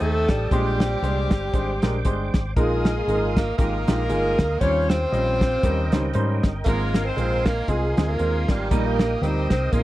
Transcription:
Already playing: tonewheel organ G5 A5 D#6
0.01 fingered electric bass D#2, tenor saxophone A3, grand piano A3 D#4 G4 D#5, saxophone section C4 D#4 A4
0.29 fingered electric bass A1, tenor saxophone G3, kick, snare, closed hi-hat
0.51 fingered electric bass A#1, grand piano A#2 G#3 D4 G4 C5, saxophone section C4 D4 G4, tonewheel organ C5 D6, kick, closed hi-hat
0.80 snare, closed hi-hat
1.02 fingered electric bass C2, grand piano G#3 D4 G4 C5, closed hi-hat
1.31 fingered electric bass G1, kick, snare, closed hi-hat
1.53 fingered electric bass G#1, grand piano G#3 D4 G4 C5, kick, closed hi-hat
1.82 fingered electric bass A#1, grand piano G#3 D4 G4 A#4, snare, closed hi-hat
2.05 fingered electric bass G1, grand piano G#3 D4 G4 C5, kick, closed hi-hat
2.34 fingered electric bass G#1, kick, snare, closed hi-hat
2.56 fingered electric bass A#1, grand piano A#2 G#3 D#4 F4 A#4, tenor saxophone G#3, saxophone section D#4 F4 G#4, tonewheel organ A#4 F5 D#6, kick, closed hi-hat
2.85 snare, closed hi-hat
3.07 fingered electric bass G#1, grand piano G#3 D#4 F4 A#4, closed hi-hat
3.36 tenor saxophone A#3, saxophone section A#4, kick, snare, closed hi-hat
3.58 fingered electric bass G#1, grand piano G#3 D#4 F4 G4, tenor saxophone A#3, saxophone section D#4 F4 A#4, kick, closed hi-hat
3.88 fingered electric bass A#1, grand piano G#3 D#4 F4 G4, snare, closed hi-hat
4.09 fingered electric bass G1, grand piano G#3 D#4 F4 G#4, closed hi-hat
4.39 fingered electric bass D2, kick, snare, closed hi-hat
4.60 fingered electric bass D#2, grand piano D#3 G3 C#4 F4 C5, tonewheel organ C4 F5 G5, tenor saxophone C#4, saxophone section F4 G4 C#5, kick, closed hi-hat
4.88 tenor saxophone C4, saxophone section F4 G4 C5, snare, closed hi-hat
5.12 fingered electric bass A#1, grand piano G3 C#4 F4 D#5, closed hi-hat
5.41 kick, snare, closed hi-hat
5.63 fingered electric bass D#2, grand piano D#3 G3 C#4 D#4 A#4, tonewheel organ A#4 D#5 G5, kick, closed hi-hat
5.92 fingered electric bass C#2, grand piano G3 C#4 D#4 C5, snare, closed hi-hat
6.14 fingered electric bass G#2, grand piano G3 C#4 D#4 C5, closed hi-hat
6.43 fingered electric bass G1, kick, snare, closed hi-hat
6.64 fingered electric bass G#1, grand piano G#2 G#3 C4 F4 A#4, tenor saxophone A#3, saxophone section D#4 F4 A#4, tonewheel organ F5 G#5 C6, kick, closed hi-hat
6.94 snare, closed hi-hat
7.05 tenor saxophone C4, saxophone section D#4 F4 C5
7.16 fingered electric bass A#1, grand piano G#3 C4 F4 C5, closed hi-hat
7.45 tenor saxophone A#3, saxophone section A#4, kick, snare, closed hi-hat
7.68 fingered electric bass C2, grand piano G#3 C4 F4 G#4, tenor saxophone G#3, saxophone section C4 F4 G#4, kick, closed hi-hat
7.97 fingered electric bass D2, grand piano G#3 C4 F4 G#4, snare, closed hi-hat
8.08 tenor saxophone A#3, saxophone section D#4 F4 A#4
8.19 fingered electric bass D#2, grand piano G#3 C4 F4 A#4, closed hi-hat
8.48 fingered electric bass G#1, tenor saxophone G3, saxophone section A#3 D#4 G4, kick, snare, closed hi-hat
8.71 fingered electric bass A#1, grand piano A#2 G3 A#3 D#4 A#4, tonewheel organ D#5 G5 D#6, kick, closed hi-hat
8.86 tenor saxophone A#3, saxophone section D#4 G4 A#4
8.99 snare, closed hi-hat
9.22 fingered electric bass D2, grand piano G3 A#3 D#4 G4, tenor saxophone C4, saxophone section D#4 G4 C5, closed hi-hat
9.50 fingered electric bass C2, tenor saxophone C4, kick, snare, closed hi-hat
9.72 fingered electric bass A#1, grand piano A#2 G#3 C4 D#4 A#4, tenor saxophone A#3, saxophone section D#4 F4 A#4, tonewheel organ D#5 G#5 C6, kick, closed hi-hat

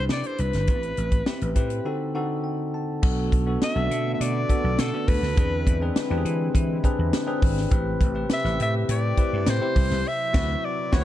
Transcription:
Already playing: tine electric piano D4 E4 G4 B4
0.09 slap bass C3, alto saxophone D5, snare
0.24 alto saxophone C5, closed hi-hat
0.38 slap bass C2, alto saxophone B4, closed hi-hat
0.53 slap bass G1, snare, closed hi-hat
0.67 slap bass A1, tine electric piano B3 E4 G4 B4, kick, closed hi-hat
0.75 tine electric piano C4
0.83 closed hi-hat
0.97 slap bass A1, closed hi-hat
1.12 kick, closed hi-hat
1.26 tine electric piano C4 E4 G4 B4, snare
1.41 slap bass A1, closed hi-hat
1.55 slap bass A2, tine electric piano C4 E4 G4 B4, kick, closed hi-hat
1.70 closed hi-hat
1.84 tine electric piano D3 C4 D#4 F#4 A4
2.14 tine electric piano D3 C4 D#4 F#4 A4 F#5
2.44 tine electric piano G5
2.74 tine electric piano A5
3.02 slap bass B1, analog synth pad D3 A3 B3 F#4, tine electric piano B3 D4 F#4 A4, kick, crash
3.32 slap bass B1, kick, closed hi-hat
3.46 tine electric piano B3 D4 F#4 A4
3.62 alto saxophone E5, snare, closed hi-hat
3.75 slap bass B1, tine electric piano B3 C4 F#4 A4
3.82 tine electric piano D4
3.91 slap bass B2, closed hi-hat
4.14 alto saxophone E5
4.20 slap bass B2, alto saxophone D5, closed hi-hat
4.49 tine electric piano B3 D4 F#4 A4, kick, closed hi-hat
4.64 slap bass B1
4.79 slap bass B2, alto saxophone A4, snare, closed hi-hat
4.94 tine electric piano B3 D4 F#4 A4
5.08 slap bass D2, alto saxophone B4, kick, open hi-hat
5.23 slap bass D2, snare
5.37 slap bass E2, analog synth pad G#3 C4 E4, tine electric piano C4 D4 G#4 B4, kick, closed hi-hat
5.67 slap bass E2, kick, closed hi-hat
5.82 tine electric piano C4 D4 G#4 B4
5.96 snare, closed hi-hat
6.10 slap bass E2, tine electric piano C4 D4 G4 B4
6.18 tine electric piano G#4
6.25 slap bass E3, closed hi-hat
6.55 slap bass E3, kick, closed hi-hat
6.84 tine electric piano C4 D4 G#4 B4, kick, closed hi-hat
6.99 slap bass E2
7.13 snare, closed hi-hat
7.27 tine electric piano C4 D4 G#4 B4
7.42 slap bass G#1, kick, open hi-hat
7.57 snare
7.71 slap bass A1, analog synth pad C3 A3 G4, tine electric piano C4 E4 G4 B4, kick, closed hi-hat
8.01 slap bass A1, kick, closed hi-hat
8.15 tine electric piano C4 E4 G4 B4
8.30 alto saxophone E5, snare, closed hi-hat
8.44 slap bass A1, tine electric piano C4 E4 G4 B4, snare
8.60 slap bass A2, alto saxophone E5, closed hi-hat
8.89 slap bass A2, alto saxophone D5, closed hi-hat
9.17 tine electric piano C4 E4 G4 B4, kick, closed hi-hat
9.33 slap bass G2
9.46 slap bass A2, alto saxophone C5, snare, closed hi-hat
9.61 tine electric piano C4 E4 G4 C5
9.76 slap bass C2, kick, open hi-hat
9.91 slap bass C2, snare
10.06 analog synth pad F#3 E4, alto saxophone E5
10.33 slap bass D2, tine electric piano C4 E4 F#4 B4, kick, snare, crash
10.65 alto saxophone D5
10.92 slap bass D2, tine electric piano C4 E4 F#4 B4, alto saxophone C#5, kick, snare

